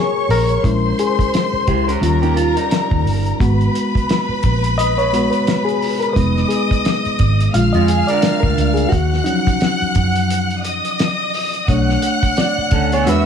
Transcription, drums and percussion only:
0.30 open hi-hat
0.49 closed hi-hat
0.64 kick, closed hi-hat
0.99 closed hi-hat
1.19 kick, closed hi-hat
1.34 snare, closed hi-hat
1.67 kick, closed hi-hat
1.89 closed hi-hat
2.03 closed hi-hat
2.23 closed hi-hat
2.37 closed hi-hat
2.57 closed hi-hat
2.71 snare, closed hi-hat
2.91 kick
3.07 open hi-hat
3.27 closed hi-hat
3.40 kick, closed hi-hat
3.61 closed hi-hat
3.75 closed hi-hat
3.95 kick, closed hi-hat
4.09 snare, closed hi-hat
4.43 kick, closed hi-hat
4.64 closed hi-hat
4.79 closed hi-hat
4.99 closed hi-hat
5.14 closed hi-hat
5.33 closed hi-hat
5.47 snare, closed hi-hat
5.69 closed hi-hat
5.82 open hi-hat
6.02 closed hi-hat
6.16 kick, closed hi-hat
6.37 snare
6.50 closed hi-hat
6.71 kick, closed hi-hat
6.85 snare, closed hi-hat
7.05 closed hi-hat
7.19 kick, closed hi-hat
7.40 closed hi-hat
7.54 closed hi-hat
7.74 closed hi-hat
7.88 closed hi-hat
8.08 closed hi-hat
8.22 snare, closed hi-hat
8.43 kick
8.58 closed hi-hat
8.77 closed hi-hat
8.92 kick, closed hi-hat
9.13 snare
9.26 closed hi-hat
9.47 kick, closed hi-hat
9.61 snare, closed hi-hat
9.81 closed hi-hat
9.95 kick, closed hi-hat
10.16 closed hi-hat
10.30 closed hi-hat
10.51 closed hi-hat
10.65 closed hi-hat
10.85 closed hi-hat
10.99 snare, closed hi-hat
11.34 open hi-hat
11.54 closed hi-hat
11.68 kick, closed hi-hat
11.89 snare
12.02 closed hi-hat
12.23 kick, closed hi-hat
12.37 snare, closed hi-hat
12.71 kick, closed hi-hat
12.92 closed hi-hat
13.07 closed hi-hat

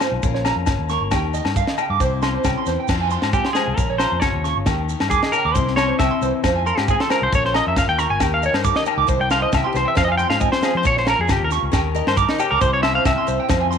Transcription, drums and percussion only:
0.00 snare, low agogo, shekere
0.23 kick, shekere
0.35 snare
0.45 snare, low agogo, shekere
0.66 kick, snare, low agogo, shekere
0.89 snare, shekere
1.11 kick, snare, low agogo, shekere
1.34 shekere
1.45 snare, low agogo
1.56 kick, shekere
1.67 snare
1.78 low agogo, shekere
2.00 kick, shekere
2.22 snare, low agogo, shekere
2.44 kick, snare, low agogo, shekere
2.66 snare, shekere
2.88 kick, snare, crash, low agogo, shekere
3.10 shekere
3.22 snare, low agogo
3.33 kick, shekere
3.45 snare
3.55 snare, low agogo, shekere
3.78 kick, shekere
3.99 snare, low agogo, shekere
4.22 kick, snare, low agogo, shekere
4.44 snare, shekere
4.66 kick, snare, low agogo, shekere
4.89 shekere
5.00 snare, low agogo
5.11 kick, shekere
5.23 snare
5.33 low agogo, shekere
5.55 kick, shekere
5.68 snare
5.77 snare, low agogo, shekere
5.99 kick, snare, low agogo, shekere
6.22 shekere
6.44 kick, snare, low agogo, shekere
6.67 shekere
6.78 snare, low agogo
6.88 kick, shekere
7.00 snare
7.10 snare, low agogo, shekere
7.33 kick, shekere
7.45 snare
7.54 snare, low agogo
7.76 kick, snare, low agogo, shekere
7.99 snare, shekere
8.20 kick, snare, low agogo, shekere
8.43 shekere
8.54 snare, low agogo
8.64 kick, shekere
8.76 snare
8.86 low agogo, shekere
9.08 kick, shekere
9.30 snare, low agogo, shekere
9.52 kick, snare, low agogo, shekere
9.75 snare, shekere
9.97 kick, snare, low agogo, shekere
10.19 shekere
10.30 snare, low agogo
10.40 kick, shekere
10.53 snare
10.63 snare, low agogo, shekere
10.85 kick, shekere
10.97 snare
11.07 snare, low agogo, shekere
11.29 kick, snare, low agogo, shekere
11.51 snare, shekere
11.73 kick, snare, low agogo, shekere
11.95 shekere
12.07 snare, low agogo
12.17 kick, shekere
12.29 snare
12.39 low agogo, shekere
12.61 kick, shekere
12.83 snare, low agogo
13.05 kick, snare, low agogo, shekere
13.28 shekere
13.49 kick, snare, low agogo, shekere
13.72 shekere

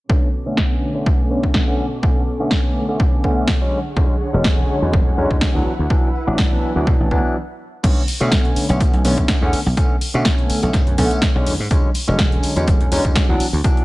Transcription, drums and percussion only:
0.10 kick
0.57 kick, snare
1.06 kick
1.43 kick
1.54 kick, snare
2.03 kick
2.27 tambourine
2.40 tambourine
2.51 kick, snare
3.00 kick
3.24 kick
3.48 kick, snare
3.97 kick
4.21 tambourine
4.34 tambourine
4.44 kick, snare
4.70 tambourine
4.93 kick
5.18 tambourine
5.31 kick
5.41 kick, snare
5.66 tambourine
5.79 tambourine
5.90 kick
6.15 tambourine
6.27 tambourine
6.38 kick, snare
6.62 tambourine
6.76 tambourine
6.87 kick
7.11 kick, tambourine
7.24 tambourine
7.83 kick, closed hi-hat, tambourine, crash
8.08 open hi-hat, tambourine
8.21 tambourine
8.32 kick, snare, closed hi-hat, tambourine
8.45 closed hi-hat
8.56 open hi-hat, tambourine
8.69 closed hi-hat, tambourine
8.80 kick, closed hi-hat, tambourine
8.94 closed hi-hat
9.04 open hi-hat, tambourine
9.18 kick, closed hi-hat, tambourine
9.28 kick, snare, closed hi-hat, tambourine
9.53 open hi-hat, tambourine
9.66 tambourine
9.77 kick, closed hi-hat, tambourine
10.01 open hi-hat, tambourine
10.15 tambourine
10.25 kick, snare, closed hi-hat
10.38 closed hi-hat
10.50 open hi-hat, tambourine
10.63 closed hi-hat, tambourine
10.73 kick, snare, closed hi-hat, tambourine
10.87 closed hi-hat
10.98 kick, open hi-hat, tambourine
11.11 closed hi-hat, tambourine
11.22 kick, snare, closed hi-hat, tambourine
11.47 open hi-hat, tambourine
11.60 tambourine
11.71 kick, closed hi-hat, tambourine
11.94 open hi-hat, tambourine
12.08 closed hi-hat, tambourine
12.19 kick, snare, closed hi-hat, tambourine
12.32 closed hi-hat
12.43 open hi-hat, tambourine
12.55 closed hi-hat, tambourine
12.67 kick, closed hi-hat, tambourine
12.81 closed hi-hat
12.92 open hi-hat, tambourine
13.05 kick, closed hi-hat, tambourine
13.15 kick, snare, closed hi-hat, tambourine
13.40 open hi-hat, tambourine
13.54 tambourine
13.64 kick, closed hi-hat, tambourine
13.77 closed hi-hat

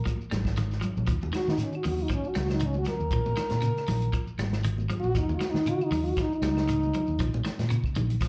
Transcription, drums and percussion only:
0.06 kick, closed hi-hat, high conga, claves, shekere
0.21 shekere
0.32 snare, closed hi-hat, low conga, shekere
0.45 kick, snare, claves, shekere
0.57 snare, closed hi-hat, low conga, shekere
0.71 snare, shekere
0.82 closed hi-hat, low conga, claves, shekere
0.97 low conga, shekere
1.07 kick, closed hi-hat, shekere
1.21 high conga, shekere
1.34 snare, closed hi-hat, claves, shekere
1.47 snare, shekere
1.58 snare, closed hi-hat, shekere
1.73 claves, shekere
1.84 open hi-hat, high conga, low conga, shekere
1.98 shekere
2.10 kick, closed hi-hat, high conga, claves, shekere
2.24 shekere
2.35 snare, closed hi-hat, high conga, shekere
2.48 snare, low conga, claves, shekere
2.60 closed hi-hat, shekere
2.73 high conga, shekere
2.85 snare, closed hi-hat, low conga, claves, shekere
3.00 shekere
3.11 kick, closed hi-hat, shekere
3.26 high conga, shekere
3.37 snare, closed hi-hat, claves, shekere
3.50 snare, closed hi-hat, shekere
3.62 closed hi-hat, shekere
3.76 snare, claves, shekere
3.87 snare, open hi-hat, high conga, low conga, shekere
4.02 closed hi-hat, shekere
4.13 kick, closed hi-hat, claves, shekere
4.27 shekere
4.39 snare, closed hi-hat, high conga, shekere
4.53 snare, claves, shekere
4.64 closed hi-hat, shekere
4.78 high conga, shekere
4.90 closed hi-hat, low conga, claves, shekere
5.03 shekere
5.15 kick, closed hi-hat, shekere
5.29 high conga, shekere
5.41 snare, closed hi-hat, claves, shekere
5.55 snare, high conga, shekere
5.66 closed hi-hat, shekere
5.81 claves, shekere
5.92 open hi-hat, high conga, low conga, shekere
6.06 shekere
6.17 kick, snare, closed hi-hat, claves, shekere
6.32 shekere
6.42 snare, closed hi-hat, high conga, shekere
6.57 snare, low conga, claves, shekere
6.68 closed hi-hat, shekere
6.83 high conga, shekere
6.94 closed hi-hat, low conga, claves, shekere
7.07 shekere
7.19 kick, closed hi-hat, shekere
7.33 high conga, shekere
7.45 snare, closed hi-hat, claves, shekere
7.59 snare, closed hi-hat, high conga, shekere
7.70 closed hi-hat, shekere
7.84 kick, claves, shekere
7.95 closed hi-hat, high conga, low conga, shekere
8.10 closed hi-hat, shekere
8.21 kick, snare, closed hi-hat, claves, shekere

